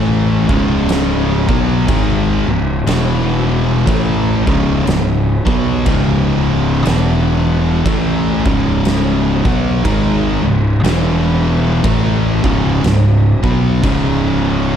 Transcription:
0.00 0.45 A1 loud
0.00 0.47 A2 medium
0.00 0.47 E3 loud
0.00 0.48 A3 loud
0.48 1.45 C#1 medium
0.48 1.46 C#2 medium
0.48 1.47 G#2 loud
0.48 1.47 C#3 loud
0.48 kick loud
0.89 snare loud
0.89 crash medium
1.48 1.86 B1 loud
1.48 1.87 B2 medium
1.48 1.87 F#3 loud
1.48 1.88 B3 medium
1.48 kick loud
1.87 2.44 G#1 loud
1.87 2.46 G#2 loud
1.87 2.46 D#3 loud
1.87 2.46 G#3 loud
1.87 kick loud
1.87 crash medium
2.48 2.85 C#1 medium
2.48 2.80 C#2 medium
2.48 2.80 G#2 medium
2.87 3.83 E1 loud
2.87 3.86 E2 loud
2.87 3.86 B2 loud
2.87 3.86 E3 loud
2.87 snare loud
2.87 crash medium
3.86 4.43 A1 loud
3.86 4.45 A2 loud
3.86 4.45 E3 loud
3.86 4.46 A3 loud
3.86 kick loud
3.86 crash medium
4.46 4.84 C#1 medium
4.46 4.85 C#2 medium
4.46 4.85 G#2 medium
4.46 4.86 C#3 loud
4.46 kick loud
4.87 5.43 C#1 medium
4.87 5.35 C#2 medium
4.87 5.35 G#2 medium
4.87 snare loud
4.87 crash medium
5.46 5.84 B1 loud
5.46 5.85 B2 medium
5.46 5.85 F#3 medium
5.46 5.85 B3 medium
5.46 kick loud
5.86 6.82 C#1 medium
5.86 6.85 C#2 loud
5.86 6.85 G#2 loud
5.86 6.85 C#3 loud
5.86 kick loud
5.86 crash medium
6.85 7.82 E1 medium
6.85 7.84 E2 medium
6.85 7.85 B2 loud
6.85 7.84 E3 loud
6.85 snare loud
6.85 crash medium
7.85 8.41 A1 loud
7.85 8.43 A2 medium
7.85 8.43 E3 loud
7.85 8.44 A3 loud
7.85 kick loud
7.85 crash medium
8.45 9.41 C#1 medium
8.45 9.43 C#2 medium
8.45 9.43 G#2 medium
8.45 9.44 C#3 loud
8.45 kick loud
8.85 snare loud
8.85 crash medium
9.44 9.82 B1 loud
9.44 9.83 B2 medium
9.44 9.84 F#3 medium
9.44 9.84 B3 loud
9.44 kick loud
9.84 10.41 G#1 medium
9.84 10.42 G#2 loud
9.84 10.43 D#3 loud
9.84 10.43 G#3 loud
9.84 kick loud
9.84 crash medium
10.44 10.82 C#1 medium
10.44 10.76 C#2 medium
10.44 10.76 G#2 medium
10.83 11.79 E1 loud
10.83 11.82 E2 medium
10.83 11.83 B2 loud
10.83 11.83 E3 loud
10.83 snare loud
10.83 crash medium
11.83 12.40 A1 loud
11.83 12.42 A2 medium
11.83 12.42 E3 loud
11.83 12.42 A3 loud
11.83 kick loud
11.83 crash medium
12.43 12.81 C#1 medium
12.43 12.82 C#2 medium
12.43 12.82 G#2 medium
12.43 12.83 C#3 loud
12.43 kick loud
12.83 13.39 C#1 medium
12.83 13.31 C#2 medium
12.83 13.31 G#2 medium
12.83 snare loud
12.83 crash medium
13.43 13.81 B1 medium
13.43 13.82 B2 medium
13.43 13.82 F#3 loud
13.43 13.83 B3 loud
13.43 kick loud
13.82 14.77 C#1 loud
13.82 14.77 C#2 loud
13.82 14.77 G#2 loud
13.82 14.77 C#3 loud
13.82 kick loud
13.82 crash medium

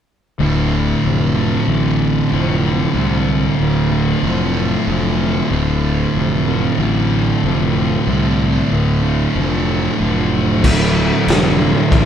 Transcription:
0.39 0.93 D1 medium
0.39 1.37 D2 medium
0.39 1.34 A2 medium
0.39 1.35 D3 medium
1.04 1.57 F1 medium
1.35 2.30 D2 medium
1.35 2.30 A2 medium
1.35 2.32 D3 medium
1.65 2.20 A1 medium
1.65 2.93 D2 medium
1.65 2.93 A2 medium
1.69 2.97 D3 medium
2.30 2.84 F1 medium
2.30 2.94 D2 medium
2.30 2.94 A2 medium
2.30 2.96 D3 medium
2.94 3.47 C2 medium
2.94 3.92 D2 medium
2.94 3.90 A2 medium
2.94 3.89 D3 loud
3.60 4.13 D1 medium
3.90 4.86 D2 medium
3.90 4.86 A2 medium
3.90 4.89 D3 medium
4.22 4.76 F1 medium
4.22 5.49 D2 medium
4.22 5.50 A2 medium
4.26 5.53 D3 medium
4.86 5.40 F1 medium
4.86 5.51 D2 medium
4.86 5.50 A2 medium
4.86 5.53 D3 medium
5.50 6.04 D1 medium
5.50 6.49 D2 medium
5.50 6.46 A2 medium
5.50 6.46 D3 medium
6.15 6.68 F1 medium
6.47 7.44 D2 medium
6.47 7.43 A2 medium
6.47 7.46 D3 medium
6.78 7.32 A1 medium
6.78 8.07 D2 medium
6.78 8.07 A2 medium
6.83 8.12 D3 medium
7.43 7.96 F1 medium
7.43 8.08 D2 medium
7.43 8.07 A2 medium
7.43 8.10 D3 medium
8.07 8.60 C2 medium
8.07 9.02 D2 medium
8.07 9.03 A2 medium
8.07 9.02 D3 medium
8.72 9.25 D1 medium
9.03 9.98 D2 medium
9.03 9.98 A2 medium
9.03 9.98 D3 medium
9.35 9.88 F1 medium
9.35 10.62 D2 medium
9.35 10.63 A2 medium
9.40 10.64 D3 medium
9.99 10.64 F1 medium
9.99 10.61 D2 medium
9.99 10.62 A2 medium
9.99 10.62 D3 medium
10.63 11.10 D1 loud
10.63 12.05 D2 medium
10.63 12.05 A2 medium
10.63 12.05 D3 medium
10.63 12.05 A3 medium
10.63 12.05 E4 medium
10.63 kick loud
10.63 crash loud
10.63 crash medium
10.82 snare soft
11.27 11.73 F1 medium
11.27 snare loud
11.27 crash medium
11.92 12.05 A1 loud
11.92 kick loud
11.92 crash medium

